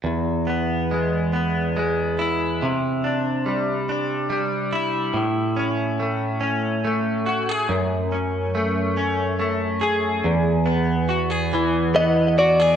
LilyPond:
<<
  \new Staff \with { instrumentName = "Clean electric guitar" } { \time 6/8 \key e \major \tempo 4. = 47 r2. | r2. | r2. | r2. |
r2 dis''8 d''8 | }
  \new Staff \with { instrumentName = "Clean electric guitar" } { \time 6/8 \key e \major e,8 b8 gis8 b8 gis8 e'8 | c8 d'8 g8 d'8 g8 e'8 | a,8 cis'8 a8 cis'8 a8 fis'16 gis'16 | fis,8 cis'8 a8 cis'8 a8 gis'8 |
e,8 b8 fis'16 gis'16 e8 b8 fis'16 gis'16 | }
>>